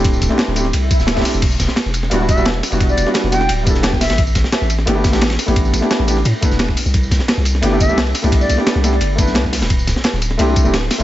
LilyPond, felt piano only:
\new Staff \with { instrumentName = "Felt piano" } { \time 4/4 \key e \minor \tempo 4 = 174 <a c' d' e' g'>8. <a c' d' e' g'>8. <a c' d' e' g'>16 r4. <a c' d' e' g'>8. | r2 <g b d' e' fis'>16 <g b d' e' fis'>8 <g b d' e' fis'>16 r8. <g b d' e' fis'>16~ | <g b d' e' fis'>8. <g b d' e' fis'>8. <g b d' e' fis'>16 r8. <g b d' e' a'>4. | r2 <a b d' e' g'>16 <a b d' e' g'>8 <a b d' e' g'>16 r8. <a b d' e' g'>16~ |
<a b d' e' g'>8. <a b d' e' g'>8. <a b d' e' g'>16 r8. <a b d' e' b'>4 r8 | r2 <a b d' e' g'>16 <a b d' e' g'>8 <a b d' e' g'>16 r8. <a b d' e' g'>16~ | <a b d' e' g'>8. <a b d' e' g'>8. <a b d' e' g'>16 r8. <a b d' e' b'>4. | r2 <a c' d' e' g'>16 <a c' d' e' g'>8 <a c' d' e' g'>16 r8. <a c' d'>16 | }